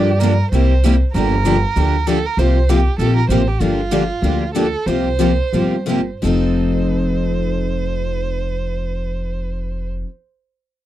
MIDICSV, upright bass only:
0, 0, Header, 1, 2, 480
1, 0, Start_track
1, 0, Tempo, 308166
1, 1779, Time_signature, 4, 2, 24, 8
1, 6100, Tempo, 319319
1, 8020, Tempo, 346021
1, 9460, Tempo, 362757
1, 15575, End_track
2, 0, Start_track
2, 0, Title_t, "Upright bass"
2, 0, Program_c, 0, 32
2, 0, Note_on_c, 0, 43, 84
2, 617, Note_off_c, 0, 43, 0
2, 810, Note_on_c, 0, 36, 80
2, 1581, Note_off_c, 0, 36, 0
2, 1781, Note_on_c, 0, 31, 85
2, 2548, Note_off_c, 0, 31, 0
2, 2742, Note_on_c, 0, 38, 73
2, 3509, Note_off_c, 0, 38, 0
2, 3695, Note_on_c, 0, 36, 78
2, 4464, Note_off_c, 0, 36, 0
2, 4645, Note_on_c, 0, 34, 72
2, 5059, Note_off_c, 0, 34, 0
2, 5119, Note_on_c, 0, 33, 79
2, 5535, Note_off_c, 0, 33, 0
2, 5613, Note_on_c, 0, 31, 68
2, 6378, Note_off_c, 0, 31, 0
2, 6559, Note_on_c, 0, 38, 80
2, 7328, Note_off_c, 0, 38, 0
2, 7523, Note_on_c, 0, 36, 77
2, 8299, Note_off_c, 0, 36, 0
2, 8481, Note_on_c, 0, 31, 68
2, 9262, Note_off_c, 0, 31, 0
2, 9453, Note_on_c, 0, 29, 80
2, 14471, Note_off_c, 0, 29, 0
2, 15575, End_track
0, 0, End_of_file